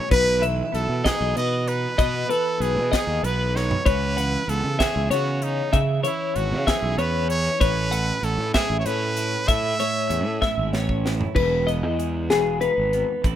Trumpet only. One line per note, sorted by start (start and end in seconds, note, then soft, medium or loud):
0.00 0.11 C#5 medium
0.12 0.45 B4 loud
0.74 1.03 A4 medium
1.06 1.35 G#4 medium
1.37 1.70 D#5 medium
1.68 2.32 B4 medium
2.30 2.63 A4 medium
2.62 2.93 G#4 medium
2.95 3.26 G#4 medium
3.24 3.58 B4 medium
3.56 3.88 C#5 medium
3.86 4.51 B4 loud
4.49 4.81 A4 medium
4.80 5.11 G#4 medium
5.11 5.45 F#4 medium
5.43 5.78 D#4 medium
6.06 6.37 E4 medium
6.36 6.70 F#4 medium
6.69 7.00 G#4 medium
6.99 7.30 B4 medium
7.30 7.62 C#5 loud
7.61 8.25 B4 loud
8.24 8.54 A4 medium
8.54 8.77 G#4 medium
8.80 8.88 C#5 medium
8.86 9.50 B4 loud
9.48 10.74 E5 loud